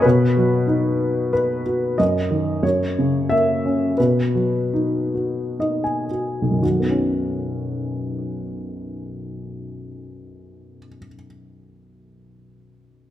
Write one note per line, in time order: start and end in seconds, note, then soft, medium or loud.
0.02 1.95 B2 medium
0.02 1.31 B4 medium
0.37 1.62 F#3 soft
0.67 1.94 D#4 soft
1.33 2.00 B4 medium
1.66 1.98 F#4 soft
1.98 2.61 F#2 soft
1.98 2.66 D#5 medium
2.31 2.63 D#3 soft
2.63 3.94 F#2 soft
2.63 3.31 C#5 medium
2.98 3.96 C#3 soft
3.29 3.97 A#3 soft
3.29 4.00 E5 medium
3.66 3.98 C#4 soft
3.98 6.59 B2 medium
3.98 6.04 B4 medium
4.35 6.04 F#3 soft
4.74 5.58 D#4 soft
5.14 6.10 F#4 soft
5.60 6.60 D#4 soft
5.60 5.82 D#5 soft
5.84 6.59 G#5 soft
6.11 6.61 F#4 soft
6.42 10.77 B1 soft
6.51 10.86 F#2 soft
6.61 10.96 D#3 soft
6.61 10.98 F#4 soft
6.70 11.05 F#3 soft
6.80 11.15 B3 soft
6.90 11.24 C#4 soft